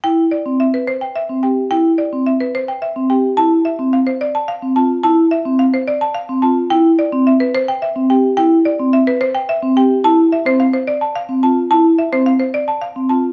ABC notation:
X:1
M:3/4
L:1/16
Q:1/4=108
K:C
V:1 name="Marimba"
g z d z e B c g e z g z | g z d z e B c g e z g z | a z e z f c d a f z a z | a z e z f c d a f z a z |
g z d z e B c g e z g z | g z d z e B c g e z g z | a z e c f c d a f z a z | a z e c f c d a f z a z |]
V:2 name="Vibraphone"
E z2 C z4 z C G z | E z2 C z4 z C G z | E z2 C z4 z C F z | E z2 C z4 z C F z |
E z2 C z4 z C G z | E z2 C z4 z C G z | E z2 C z4 z C F z | E z2 C z4 z C F z |]